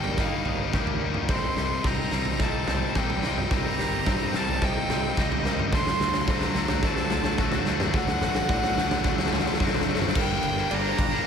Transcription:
Already playing: fingered electric bass G1, distorted electric guitar G2 D#3 G3 A#3 D#4, clean electric guitar G3 A#3 D#4 G4, string section D#4 G4 A#4 A5, felt piano D5, violin G5
0.04 floor tom
0.16 fingered electric bass G1, distorted electric guitar G2 D#3 G3 A#3 D#4, clean electric guitar A#3, felt piano D#5, violin F5, kick, snare
0.45 fingered electric bass G1, clean electric guitar D#4, felt piano D#5, floor tom
0.73 fingered electric bass D2, distorted electric guitar G2 D#3 G3 A#3 D#4, clean electric guitar G4, kick, snare, mid tom
0.87 floor tom
1.00 distorted electric guitar G2 D#3 G3 A#3 D#4, clean electric guitar A#3, felt piano A#4
1.14 mid tom
1.28 fingered electric bass C2, clean electric guitar C3, distorted electric guitar C3 G3 C4 D#4, felt piano C5, string section C5 G5, violin C6, kick, snare, floor tom, crash
1.56 fingered electric bass C2, clean electric guitar G4, snare
1.84 fingered electric bass C2, distorted electric guitar C3 G3 C4 D#4, clean electric guitar C4, felt piano D#5, violin A#5, kick, snare, floor tom
2.11 fingered electric bass C2, distorted electric guitar C3 G3 C4 D#4, clean electric guitar D#3, snare
2.25 floor tom
2.39 fingered electric bass C2, distorted electric guitar C3 G3 C4 D#4, clean electric guitar A#3, felt piano D#5, violin A5, kick, snare
2.67 fingered electric bass C2, clean electric guitar C4, felt piano C5, snare, floor tom
2.95 fingered electric bass C2, distorted electric guitar C3 G3 C4 D#4, clean electric guitar G4, violin G5, kick, snare
3.10 floor tom
3.23 fingered electric bass C2, distorted electric guitar C3 G3 C4 D#4, clean electric guitar A#3, felt piano D#5, snare
3.38 mid tom
3.51 fingered electric bass C2, distorted electric guitar C3 G3 C4 D#4, clean electric guitar C3, felt piano A#4, violin A#5, kick, snare, floor tom
3.78 fingered electric bass G1, clean electric guitar G4, snare
4.06 fingered electric bass G2, distorted electric guitar C3 G3 C4 D#4, clean electric guitar C4, felt piano C5, kick, snare, floor tom
4.34 fingered electric bass C2, distorted electric guitar C3 G3 C4 D#4, clean electric guitar D#3, violin A5, snare
4.49 floor tom
4.61 fingered electric bass C2, distorted electric guitar C3 G3 C4 D#4, clean electric guitar A#3, felt piano D#5, violin G5, kick, snare
4.89 fingered electric bass C2, clean electric guitar C4, felt piano D#5, snare, floor tom
5.17 fingered electric bass C#2, distorted electric guitar C3 G3 C4 D#4, clean electric guitar G4, violin D#5, kick, snare
5.32 floor tom
5.44 distorted electric guitar C3 G3 C4 D#4, clean electric guitar A#3, felt piano A#4, snare
5.59 mid tom
5.72 fingered electric bass D2, distorted electric guitar D3 F#3 A3 D4, clean electric guitar D3, string section A3 D4 F#5, felt piano A4, violin C6, kick, snare, floor tom
5.87 snare
6.00 fingered electric bass D2, clean electric guitar F#4, snare
6.14 snare
6.28 fingered electric bass D2, distorted electric guitar D3 F#3 A3 D4, clean electric guitar C4, felt piano C5, violin A#5, kick, snare, floor tom
6.41 snare
6.55 fingered electric bass D2, distorted electric guitar D3 F#3 A3 D4, clean electric guitar D3, snare
6.68 snare, floor tom
6.83 fingered electric bass D2, distorted electric guitar D3 F#3 A3 D4, clean electric guitar A3, felt piano C5, violin A5, kick, snare
6.96 snare
7.10 fingered electric bass D2, clean electric guitar C4, felt piano A4, snare, floor tom
7.24 snare
7.38 fingered electric bass D2, distorted electric guitar D3 F#3 A3 D4, clean electric guitar F#4, kick, snare
7.52 snare, floor tom
7.65 fingered electric bass D2, distorted electric guitar D3 F#3 A3 D4, clean electric guitar A3, felt piano C5, snare
7.80 snare, mid tom
7.93 fingered electric bass D2, distorted electric guitar D3 F#3 A3 D4, clean electric guitar D3, felt piano A4, violin F#5, kick, snare, floor tom
8.08 snare
8.21 fingered electric bass A1, clean electric guitar F#4, snare, mid tom
8.35 snare
8.49 fingered electric bass A2, distorted electric guitar D3 F#3 A3 D4, clean electric guitar C4, felt piano D5, kick, snare, floor tom
8.64 snare
8.76 fingered electric bass D2, distorted electric guitar D3 F#3 A3 D4, clean electric guitar D3, snare
8.91 snare, floor tom
9.04 fingered electric bass D2, distorted electric guitar D3 F#3 A3 D4, clean electric guitar A3, felt piano F#5, kick, snare
9.18 snare
9.26 snare
9.31 fingered electric bass D2, clean electric guitar C4, felt piano F#5, snare, floor tom
9.39 snare
9.46 snare
9.54 snare
9.60 fingered electric bass F#1, distorted electric guitar D3 F#3 A3 D4, clean electric guitar F#4, kick, snare, mid tom
9.67 snare
9.74 snare, floor tom
9.81 snare
9.87 distorted electric guitar D3 F#3 A3 D4, clean electric guitar A3, felt piano C5, snare
9.95 snare
10.02 snare, mid tom
10.08 snare
10.14 fingered electric bass G1, distorted electric guitar G2 D3 G3 A#3 D4, clean electric guitar G2, string section D4 G4 G5, felt piano A#4, kick, crash
10.19 violin G5
10.43 fingered electric bass G1, clean electric guitar D3, ride
10.56 distorted electric guitar G3 A#3 D4, snare
10.70 fingered electric bass G1, distorted electric guitar G2 D3 G3 A#3 D4, clean electric guitar A#3, felt piano D5, violin A#5, ride
10.84 distorted electric guitar G3 A#3 D4
10.97 fingered electric bass G1, clean electric guitar D4, muted distorted electric guitar stroke, kick, ride
11.11 distorted electric guitar G3 A#3 D4

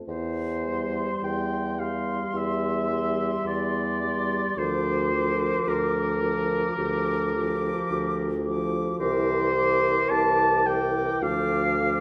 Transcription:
0.08 bassoon E2, oboe C5
0.66 french horn G3, clarinet G4, flute C6
1.23 bassoon E2, oboe G5
1.79 french horn G3, clarinet G4, oboe F5, flute C6
2.34 bassoon E2, oboe E5
2.90 french horn G3, clarinet G4, flute C6
3.45 bassoon E2, oboe D5
4.03 french horn G3, clarinet G4, flute C6
4.57 bassoon D2, french horn F3, clarinet A#4, oboe C5, flute D6
5.13 french horn F3, clarinet A#4, flute D6
5.67 bassoon D2, oboe A#4
6.22 french horn F3, clarinet A#4, flute D6
6.78 bassoon D2, french horn F3, clarinet G4, flute D6
7.35 french horn F3, clarinet G4, flute D6
7.90 bassoon D2
8.45 french horn F3, clarinet G4, flute D6
9.00 bassoon C2, french horn E3, clarinet A#4, oboe C5, flute D6
9.55 french horn E3, clarinet A#4, flute D6
10.10 bassoon C2, oboe A5
10.66 french horn E3, clarinet A#4, oboe G5, flute D6
11.22 bassoon D2, french horn F3, clarinet A4, oboe F5, flute D6
11.78 french horn F3, clarinet A4, flute D6

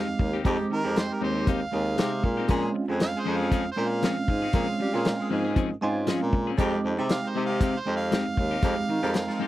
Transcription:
Already playing: tine electric piano G#3 C4 D#4 G4, harmonica F5
0.08 baritone saxophone F2, muted clean electric guitar stroke
0.19 baritone saxophone D#2, muted clean electric guitar stroke, kick
0.33 clean electric guitar C4 D#4 G4
0.44 baritone saxophone F2, horn section G3 G#3 D#4 G4, tine electric piano G#3 C4 D#4 G4, clean electric guitar G#3 C4 D#4 G4, kick, closed hi-hat
0.59 baritone saxophone F2, muted clean electric guitar stroke
0.70 baritone saxophone D#3, harmonica A#4, muted clean electric guitar stroke
0.83 baritone saxophone F2, horn section G3 G#3 D#4 G4, tine electric piano G#3 C4 D#4 G4, muted clean electric guitar stroke
0.96 harmonica C5, muted clean electric guitar stroke, snare, closed hi-hat
1.09 horn section G3 G#3 D#4 G4, harmonica A#4
1.21 baritone saxophone D#2, clean electric guitar G#3 C4 D#4 G4, harmonica C5
1.35 clean electric guitar C4 D#4 G4
1.47 clean electric guitar G#3 C4 D#4 G4, harmonica F5, kick, closed hi-hat
1.61 muted clean electric guitar stroke
1.72 baritone saxophone D#2, tine electric piano G#3 C4 D#4 G#4, muted clean electric guitar stroke
1.98 baritone saxophone C3, clean electric guitar G#3 C4 D#4 G4, snare, closed hi-hat
2.12 muted clean electric guitar stroke
2.23 baritone saxophone A#2, muted clean electric guitar stroke, kick
2.37 clean electric guitar C4 D#4 G4
2.48 baritone saxophone A#2, clean electric guitar F3 C4 C#4 G#4, tine electric piano G#3 C4 C#4 F4, horn section G#3 C4 C#4 G#4, kick, closed hi-hat
2.63 muted clean electric guitar stroke
2.75 muted clean electric guitar stroke
2.88 baritone saxophone F2, tine electric piano G#3 C4 C#4 F4, horn section G#3 C4 C#4 G#4, muted clean electric guitar stroke
3.00 harmonica F5, muted clean electric guitar stroke, snare, closed hi-hat
3.15 horn section G#3 A#3 G#4
3.20 harmonica C5
3.25 baritone saxophone F2, clean electric guitar F3 C4 C#4 G#4
3.37 clean electric guitar G#4, harmonica F5
3.41 clean electric guitar C4 C#4
3.51 clean electric guitar F3 C4 C#4 G#4, harmonica F5, kick, closed hi-hat
3.65 muted clean electric guitar stroke
3.72 harmonica C5
3.76 baritone saxophone A#2, tine electric piano G#3 C4 C#4 F4, muted clean electric guitar stroke
3.89 harmonica F5
4.02 clean electric guitar F3 C4 C#4 G#4, harmonica F5, snare, closed hi-hat
4.17 baritone saxophone A#2, muted clean electric guitar stroke
4.28 baritone saxophone G#2, muted clean electric guitar stroke, kick
4.42 clean electric guitar C4 C#4 G#4
4.53 baritone saxophone A#2, clean electric guitar F3 C4 C#4 G#4, tine electric piano G#3 C4 C#4 F4, horn section G#3 C4 C#4 G#4, kick, closed hi-hat
4.68 baritone saxophone A#2, muted clean electric guitar stroke
4.79 baritone saxophone G3, muted clean electric guitar stroke
4.93 baritone saxophone A#2, tine electric piano G#3 C4 C#4 F4, horn section G#3 C4 C#4 G#4, muted clean electric guitar stroke
5.05 muted clean electric guitar stroke, snare, closed hi-hat
5.19 horn section G#3 A#3 G#4
5.30 baritone saxophone G#2, clean electric guitar F3 C4 C#4 G#4
5.45 clean electric guitar C4 C#4 G#4
5.56 clean electric guitar F3 C4 C#4 G#4, kick, closed hi-hat
5.71 muted clean electric guitar stroke
5.82 baritone saxophone G#2, tine electric piano G#3 C4 C#4 F4 G#5, muted clean electric guitar stroke
6.07 clean electric guitar F3 C4 C#4 G#4, tine electric piano F5, snare, closed hi-hat
6.21 baritone saxophone A#2, muted clean electric guitar stroke
6.33 muted clean electric guitar stroke, kick
6.47 clean electric guitar C4 C#4 G#4
6.56 baritone saxophone F2, horn section G3 G#3 D#4 G4, tine electric piano G#3 C4 D#4 G4, clean electric guitar G#3 C4 D#4, kick, closed hi-hat
6.61 clean electric guitar G4
6.73 muted clean electric guitar stroke
6.84 baritone saxophone F2, muted clean electric guitar stroke
6.97 baritone saxophone C3, horn section G3 G#3 D#4 G4, tine electric piano G#3 C4 D#4 G4, muted clean electric guitar stroke
7.09 harmonica F5, muted clean electric guitar stroke, snare, closed hi-hat
7.22 horn section D#3 G#3 D#4
7.29 harmonica C5
7.35 baritone saxophone C3, clean electric guitar G#3 C4 D#4 G4
7.46 clean electric guitar G4, harmonica F5
7.51 clean electric guitar C4 D#4
7.61 clean electric guitar G#3 C4 D#4 G4, harmonica F5, kick, closed hi-hat
7.75 muted clean electric guitar stroke
7.79 harmonica C5
7.85 baritone saxophone F2, tine electric piano G#3 C4 D#4 G4, muted clean electric guitar stroke
7.97 harmonica F5
8.11 clean electric guitar G#3 C4 D#4 G4, harmonica F5, snare, closed hi-hat
8.26 baritone saxophone F2, muted clean electric guitar stroke
8.37 baritone saxophone D#2, muted clean electric guitar stroke, kick
8.51 clean electric guitar C4 D#4 G4
8.62 baritone saxophone F2, horn section G3 G#3 D#4 G4, tine electric piano G#3 C4 D#4 G4, clean electric guitar G#3 C4 D#4 G4, kick, closed hi-hat
8.77 baritone saxophone F2, muted clean electric guitar stroke
8.88 baritone saxophone D#3, muted clean electric guitar stroke
9.01 baritone saxophone F2, horn section G3 G#3 D#4 G4, tine electric piano G#3 C4 D#4 A#4, muted clean electric guitar stroke
9.14 muted clean electric guitar stroke, snare, closed hi-hat
9.27 horn section F3 G#3 D#4 F4, snare
9.39 clean electric guitar G#3 C4 D#4 G4

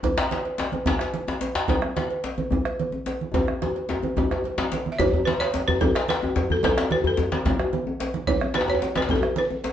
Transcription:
0.03 bombo rim, bombo low, cowbell, djembe slap, djembe bass, low conga
0.17 bombo rim, djembe slap, djembe tone
0.31 cowbell, djembe slap, high conga
0.44 cowbell, djembe slap
0.58 djembe slap
0.72 cowbell, high conga, djembe tone
0.86 bombo low, djembe slap, djembe bass, low conga
0.99 bombo rim, cowbell, djembe slap
1.14 cowbell, high conga
1.28 djembe slap, djembe tone
1.41 bombo rim, cowbell, djembe slap
1.55 djembe slap
1.68 bombo rim, bombo low, cowbell, djembe slap, low conga, djembe bass
1.82 bombo rim, djembe tone
1.96 cowbell, djembe slap, high conga
2.10 cowbell, djembe slap
2.24 djembe slap
2.38 cowbell, djembe tone, high conga
2.51 bombo low, djembe bass, low conga
2.65 bombo rim, cowbell, djembe slap
2.79 cowbell, high conga
2.92 djembe tone
3.06 bombo rim, cowbell, djembe slap
3.21 high conga
3.34 bombo low, cowbell, djembe tone, djembe bass, low conga
3.47 bombo rim, djembe tone, high conga
3.62 bombo rim, cowbell, high conga, djembe tone
3.76 cowbell, djembe slap
3.89 bombo rim, djembe slap, high conga, djembe tone
4.03 cowbell, djembe tone, high conga
4.17 bombo rim, bombo low, high conga, djembe tone, djembe bass, low conga
4.30 bombo rim, cowbell, djembe slap, djembe tone
4.44 cowbell, low conga
4.58 bombo rim, djembe slap, djembe tone, low conga
4.72 cowbell, djembe slap, high conga
4.86 djembe slap, high conga
4.92 balafon E5
4.99 balafon C#5, bombo rim, bombo low, cowbell, djembe slap, low conga, djembe bass
5.14 djembe tone, djembe bass
5.25 balafon B4, cowbell, djembe slap, high conga
5.40 balafon C#5, cowbell, djembe slap
5.54 djembe slap, djembe tone
5.68 balafon B4, cowbell, high conga, djembe tone, djembe bass
5.81 balafon A4, bombo low, low conga, djembe bass
5.95 bombo rim, cowbell, djembe slap
6.08 balafon B4, cowbell, djembe slap, high conga
6.22 djembe tone
6.36 bombo rim, cowbell, djembe slap, djembe bass
6.50 balafon A4, high conga, djembe bass
6.63 balafon A4, bombo rim, bombo low, cowbell, djembe slap, low conga, djembe bass
6.77 bombo rim, djembe slap, djembe tone
6.91 balafon B4, cowbell, high conga, djembe tone
7.04 balafon A4, cowbell, djembe slap, djembe bass
7.17 djembe slap, djembe bass
7.32 cowbell, djembe slap, djembe tone, high conga
7.45 bombo low, djembe slap, djembe bass, low conga
7.59 bombo rim, cowbell, djembe slap, djembe tone
7.73 cowbell, high conga
7.87 djembe tone
8.00 bombo rim, cowbell, djembe slap
8.14 high conga
8.27 balafon C#5, bombo rim, bombo low, cowbell, djembe slap, low conga, djembe bass
8.41 bombo rim, djembe tone
8.54 balafon B4, cowbell, djembe slap, high conga
8.61 djembe slap
8.68 balafon C#5, cowbell, djembe slap, djembe tone
8.75 djembe tone
8.82 djembe slap
8.95 balafon B4, cowbell, djembe slap, djembe tone, high conga
9.02 djembe slap
9.09 balafon A4, bombo low, djembe tone, low conga, djembe bass
9.16 djembe tone
9.23 bombo rim, cowbell, djembe slap
9.36 balafon B4, cowbell, high conga
9.50 djembe tone
9.64 bombo rim, cowbell, djembe slap

